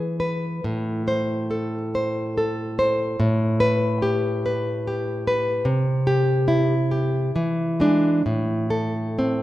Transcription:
Already playing: E3 G#4 B4
0.20 B4
0.64 A2
1.08 C5
1.51 A4
1.95 C5
2.38 A4
2.79 C5
3.20 A2
3.60 B4
4.02 G4
4.46 B4
4.87 G4
5.27 B4
5.65 C3
6.07 G4
6.48 E4
6.91 G4
7.36 E3
7.80 G#3 D4
8.26 A2
8.70 A4
9.19 C4

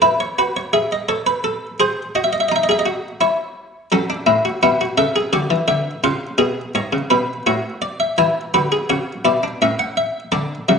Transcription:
0.02 E4 B4
0.20 C#5
0.39 F#4 B4
0.57 C#5
0.73 G#4 E5
0.92 D#5
1.09 A4 C#5
1.26 B4
1.44 A4
1.80 G#4 C5
2.15 F#4 D#5
2.24 E5
2.33 D#5
2.40 E5
2.49 D#4 D#5
2.56 E5
2.63 D#5
2.69 G#4 E5
2.79 D#5
2.86 F#4
3.21 E4 C#5
3.92 F#3 C#4 A4
4.10 D4
4.26 A2 E4
4.45 F#4
4.63 B2 E4 F#5
4.81 F#4
4.98 C#3 A4 E5
5.16 G#4
5.33 D3 F#4 D5
5.50 E3
5.68 D3 E5
6.04 C#3 F4 F5
6.38 B2 G#4
6.75 G#2 C#5
6.93 C#3
7.10 B2 B4
7.46 A2 F#4 C#5
7.82 D5
8.00 E5
8.18 E3 E4 G#5
8.54 D3 F#4 B4
8.72 G#4
8.90 C#3 F#4 C#5
9.25 B2 E4 D5
9.43 D4
9.62 A2 C#4 E5
9.79 F#5
9.97 E5
10.32 D3 D4 D5
10.69 C#3 F#3 E5

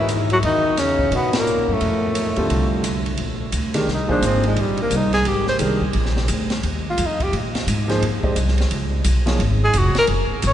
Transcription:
Already playing: G#2
0.09 cross-stick, hi-hat pedal, ride
0.30 F#3 F#4, ride
0.43 E2 D#3 D#4, ride
0.77 C#3 C#4, snare, hi-hat pedal, ride
0.99 kick
1.11 B2, ride
1.16 B3
1.33 A#2, snare, ride
1.38 A#3
1.47 hi-hat pedal
1.68 F#2 A2
1.73 A3
1.81 F2, ride
2.15 hi-hat pedal, ride
2.36 D#2 D3 G3 C4 F4 A4, ride
2.50 C2, ride
2.84 cross-stick, hi-hat pedal, ride
3.06 ride
3.17 A#1, ride
3.52 D2, hi-hat pedal, ride
3.74 D#3 G#3 D4 G4 A#4, snare, ride
3.87 C2, snare
3.94 D#4
4.08 F3 A#3 D4 D#4 G#4 C5, kick
4.21 G#1, hi-hat pedal, ride
4.26 C4
4.43 G#3, ride
4.56 A#1, ride
4.60 G3
4.77 ride
4.82 A#3
4.90 C2, hi-hat pedal, ride
4.96 D#4
5.13 G#4, snare, ride
5.25 G#1 G4, ride
5.47 C5, snare
5.59 C2 D#3 G#3 D4 G4 A#4, hi-hat pedal, ride
5.81 kick
5.93 A#1, ride
6.05 snare
6.17 snare
6.28 D2, hi-hat pedal, ride
6.50 snare, ride
6.63 D#2, ride
6.90 F4
6.98 F2, hi-hat pedal, ride
7.06 D#4
7.20 G4, kick, ride
7.33 A#2, ride
7.55 snare, ride
7.67 G#2, hi-hat pedal, ride
7.88 F3 A#3 D#4 G#4 C5, snare, ride
8.02 F2, ride
8.23 G#3 D4 G4 C5 D#5, kick
8.36 C2, hi-hat pedal, ride
8.48 snare
8.58 snare, ride
8.71 C#2, ride
9.04 B1, hi-hat pedal, ride
9.26 F3 A#3 D#4 G#4 C#5, snare, ride
9.39 G#1, ride
9.64 G#4
9.73 F1, hi-hat pedal, ride
9.78 F#4
9.95 A#4, muted upright bass stroke, snare, ride
10.07 F#1, ride
10.30 muted upright bass stroke
10.42 G#1, hi-hat pedal, ride
10.47 C#5

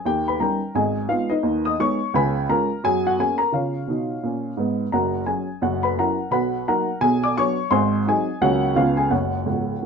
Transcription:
0.05 D#2 D#3 G4 G5
0.28 B4 B5
0.40 G3 C#4 D#4 A#4 G5 A#5
0.75 G#1 G#2 G#4 D#5 G#5
1.08 G#3 B3 D#4 F4 F5
1.30 D#4 B4 D#5
1.43 D#2 D#3
1.65 D#5 D#6
1.80 G#3 B3 D#4 C#5 C#6
2.14 C#2 C#3 B4 G#5 B5
2.49 G#3 C#4 F4 A#4 A#5
2.84 F#2 F#3 G#4 G#5
3.07 F#4 F#5
3.19 A#3 C#4 G#4 G#5
3.38 A#4 A#5
3.52 C#3 F4 C#5 F5
3.87 B2 D#4
4.23 A#2 C#4
4.57 G#2 B3
4.92 F#1 F#2 A#4 F#5 A#5
5.26 F#3 C#4 G#4 G#5
5.62 F#1 F#2 F#4 F#5
5.83 B4 B5
5.97 F#3 C#4 E4 A#4 F#5 A#5
6.31 B1 B2 B4 F#5 B5
6.68 F#3 A#3 D#4 A#4 F#5 A#5
7.01 B1 B2 G#4 G#5
7.24 D5 D6
7.37 F#3 B3 D4 C#5 C#6
7.71 G#1 G#2 C5 G#5 C6
8.07 F#3 C4 D#4 G#4 D#5 G#5
8.41 C#2 C#3 F#3 A#3 C#4 F#4 C#5 F#5
8.75 C#2 C#3 G#3 B3 C#4 F4 F5
8.97 G#4 G#5
9.10 F#1 F#2 F#4 C#5 F#5
9.46 C#1 C#2
9.82 F#3 A#3 C#4

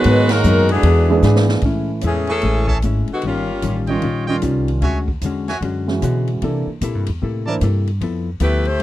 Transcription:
Already playing: D#3 F#3 G#3 B3 D#4 F#4 B4
0.04 G#2 F#3 B3 D#4, ride
0.28 D#3 F#3 G#3 A#3 D#4 F#4 A#4, snare, ride
0.43 F#2 G#2 F#3 B3 D#4, hi-hat pedal
0.68 B2 D3 E3 G#3 B3 D4 G#4, ride
0.83 E2 E3 B3 D4 G#4, ride
1.10 E3 G#3 B3 D4 G#4
1.22 G#2 E3 B3 D4 G#4, snare, hi-hat pedal
1.36 snare
1.49 snare
1.61 A2 E3 G#3 A3 C#4 E4, kick, ride
1.66 E4
2.01 E2 A2 E3 G#3 A3 C#4 E4 G#4, hi-hat pedal, ride
2.27 E3 C#4 G#4 A4 C#5 E5 G#5 C#6, ride
2.42 A1 A2 G#3 C#4 E4, ride
2.68 G#4 C#5 E5 A5, kick
2.82 G#1 A2 G#3 C#4 E4, hi-hat pedal, ride
3.08 ride
3.12 D3 G#3 B3 F#4
3.22 G1 D#3 G3, ride
3.26 G3 A#3 C#4 F4
3.62 A1 D#3 G3 C#4 F4, hi-hat pedal, ride
3.87 D#3 G3 C#4 F4 C#5 D#5 G5, ride
4.02 A#1 D#3 G3 C#4 F4, ride
4.27 D#3 G3 C#4 F4 C#5 D#5 G5
4.42 C2 D#3 G3 C#4 F4, hi-hat pedal, ride
4.68 ride
4.82 D2 D3 G#3 C#4 F#4 C#5 E5 G#5, ride
5.08 kick
5.21 E2 D3 G#3, hi-hat pedal, ride
5.26 C#4 F#4
5.48 F#4 C#5 E5 G#5, snare, ride
5.61 F#2 D3 G#3 C#4 F#4, ride
5.88 E3 G#3 C#4 F#4, snare
6.02 B2 D3 G#3 C#4 F#4, hi-hat pedal, ride
6.27 ride
6.42 C3 E3 A#3 D4 E4 A4, ride
6.67 muted upright bass stroke
6.81 A#2 C3 A#3 E4 A4, hi-hat pedal, ride
6.95 G2
7.06 E2, ride
7.22 A2 C3 A#3 E4 A4
7.47 E3 A#3 D4 E4 A#4 C5 D5 A5
7.61 G2 C3 A#3 E4 A4, hi-hat pedal, ride
7.87 ride
8.01 F2 F3 B3 E4 A4, ride
8.40 D2 F3 A3 B3 E4 G4 A4 B4, hi-hat pedal, ride
8.65 A3 E4 G4 C5, ride
8.80 F3, ride

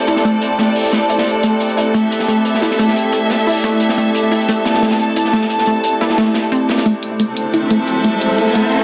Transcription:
Already playing: A3 C4 E4 G4 A4 C5 D5
0.07 E4, closed hi-hat
0.16 snare
0.25 A3, closed hi-hat
0.33 shaker
0.42 closed hi-hat
0.58 A3, snare, closed hi-hat
0.76 closed hi-hat, open hi-hat, shaker
0.93 A3, snare, closed hi-hat
1.09 E4, closed hi-hat, shaker
1.18 snare
1.27 closed hi-hat
1.43 A3 D5, closed hi-hat
1.60 closed hi-hat
1.69 closed hi-hat, shaker
1.77 E4, closed hi-hat, shaker
1.94 A3 E5, closed hi-hat
2.11 closed hi-hat, shaker
2.19 snare
2.28 A3, closed hi-hat
2.45 closed hi-hat
2.54 snare
2.62 E4, snare, closed hi-hat
2.71 snare
2.79 A3, closed hi-hat
2.88 snare
2.96 closed hi-hat
3.04 shaker
3.12 A3, closed hi-hat, shaker
3.30 snare, closed hi-hat
3.47 E4, closed hi-hat, open hi-hat, shaker
3.64 A3, snare, closed hi-hat
3.80 closed hi-hat, shaker
3.89 snare
3.98 A3, closed hi-hat
4.15 closed hi-hat, shaker
4.23 shaker
4.32 E4, closed hi-hat
4.40 closed hi-hat, shaker
4.49 A3, closed hi-hat
4.65 A5, snare, closed hi-hat, shaker
4.74 snare, closed hi-hat
4.82 A3, snare, closed hi-hat
4.91 snare, closed hi-hat
4.99 closed hi-hat, shaker
5.16 E4, closed hi-hat
5.25 snare
5.33 A3, snare, closed hi-hat
5.42 snare
5.50 closed hi-hat, shaker
5.59 snare
5.66 A3, closed hi-hat
5.76 shaker
5.84 closed hi-hat, shaker
6.01 E4, snare, closed hi-hat
6.09 snare, closed hi-hat
6.18 A3, snare, closed hi-hat
6.34 snare, closed hi-hat
6.52 C4, closed hi-hat, shaker
6.69 snare, closed hi-hat, shaker
6.77 snare, closed hi-hat
6.86 A3 C4 E4 A4 C5, closed hi-hat, riser
7.03 closed hi-hat
7.20 A3, closed hi-hat
7.26 A4
7.37 closed hi-hat
7.54 E4 E5, closed hi-hat
7.71 A3, closed hi-hat
7.87 closed hi-hat
8.04 A3, closed hi-hat
8.21 closed hi-hat
8.38 E4, closed hi-hat
8.55 A3, closed hi-hat
8.72 closed hi-hat

